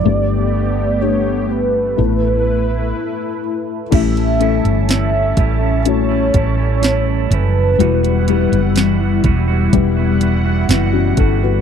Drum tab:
CC |----------------|x---------------|----------------|
HH |----------------|xxxxx-x-x-x-x-x-|xxxxx-x-x-x-x-x-|
SD |----------------|----o-------o---|----o-------o---|
BD |----------------|o-----o---o-----|------o-o-----o-|